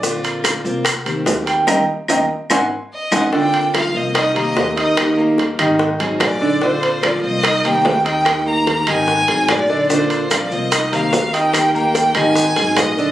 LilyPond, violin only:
\new Staff \with { instrumentName = "Violin" } { \time 4/4 \key bes \major \tempo 4 = 146 r1 | r2. ees''4 | g''4 f''8 ees''8 ees''8 ees''4 ees''8~ | ees''8 r2 r8 d''4 |
c''4 d''8 ees''4 g''4 g''8~ | g''8 bes''4 aes''4. d''4 | c''8 c''8 d''8 ees''4 f''4 g''8~ | g''8 g''4 aes''4. ees''4 | }